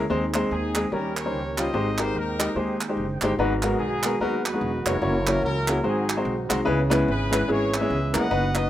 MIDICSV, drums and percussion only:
0, 0, Header, 1, 2, 480
1, 0, Start_track
1, 0, Tempo, 410678
1, 116, Time_signature, 4, 2, 24, 8
1, 10165, End_track
2, 0, Start_track
2, 0, Title_t, "Drums"
2, 398, Note_on_c, 9, 39, 94
2, 515, Note_off_c, 9, 39, 0
2, 879, Note_on_c, 9, 39, 118
2, 996, Note_off_c, 9, 39, 0
2, 1366, Note_on_c, 9, 39, 89
2, 1483, Note_off_c, 9, 39, 0
2, 1845, Note_on_c, 9, 39, 98
2, 1962, Note_off_c, 9, 39, 0
2, 2316, Note_on_c, 9, 39, 90
2, 2433, Note_off_c, 9, 39, 0
2, 2807, Note_on_c, 9, 39, 107
2, 2923, Note_off_c, 9, 39, 0
2, 3283, Note_on_c, 9, 39, 91
2, 3400, Note_off_c, 9, 39, 0
2, 3757, Note_on_c, 9, 39, 99
2, 3874, Note_off_c, 9, 39, 0
2, 4237, Note_on_c, 9, 39, 83
2, 4354, Note_off_c, 9, 39, 0
2, 4713, Note_on_c, 9, 39, 111
2, 4830, Note_off_c, 9, 39, 0
2, 5209, Note_on_c, 9, 39, 87
2, 5326, Note_off_c, 9, 39, 0
2, 5683, Note_on_c, 9, 39, 103
2, 5800, Note_off_c, 9, 39, 0
2, 6160, Note_on_c, 9, 39, 96
2, 6277, Note_off_c, 9, 39, 0
2, 6637, Note_on_c, 9, 39, 126
2, 6754, Note_off_c, 9, 39, 0
2, 7124, Note_on_c, 9, 39, 93
2, 7241, Note_off_c, 9, 39, 0
2, 7602, Note_on_c, 9, 39, 100
2, 7719, Note_off_c, 9, 39, 0
2, 8087, Note_on_c, 9, 39, 92
2, 8204, Note_off_c, 9, 39, 0
2, 8569, Note_on_c, 9, 39, 111
2, 8686, Note_off_c, 9, 39, 0
2, 9047, Note_on_c, 9, 39, 84
2, 9164, Note_off_c, 9, 39, 0
2, 9519, Note_on_c, 9, 39, 103
2, 9636, Note_off_c, 9, 39, 0
2, 9995, Note_on_c, 9, 39, 90
2, 10112, Note_off_c, 9, 39, 0
2, 10165, End_track
0, 0, End_of_file